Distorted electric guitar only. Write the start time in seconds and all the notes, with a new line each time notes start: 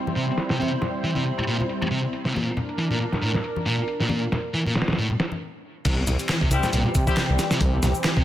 0.16 C3
0.50 C3
0.60 C3
1.04 E3
1.16 C3
1.47 A#2
1.91 C3
2.25 C3
2.35 A#2
2.78 E3
2.91 A#2
3.22 A2
3.66 A#2
4.00 A#2
4.10 A#2
4.54 E3
4.66 A#2
4.98 A2
5.86 C3
6.29 E3
6.41 C3
6.73 A#2
7.17 C3
7.51 C3
7.61 C3
8.05 E3
8.17 C3